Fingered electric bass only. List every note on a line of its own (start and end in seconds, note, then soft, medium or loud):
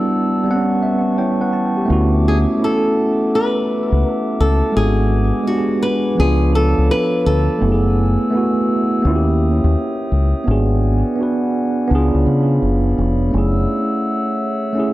1.90 2.45 D2 loud
3.92 4.03 C#2 medium
4.40 4.61 C#2 loud
4.76 5.31 G#1 loud
6.19 6.73 C#2 medium
6.78 6.89 C#2 medium
7.26 7.47 D2 loud
7.62 8.16 F#1 loud
9.05 9.59 D#2 loud
9.64 9.75 D#2 medium
10.12 10.32 C#2 medium
10.48 11.02 G#1 loud
11.91 12.11 C#2 medium
12.14 12.25 C#2 medium
12.27 12.58 C#3 medium
12.62 12.94 F#1 medium
12.98 13.30 F1 medium
13.34 13.65 F#1 loud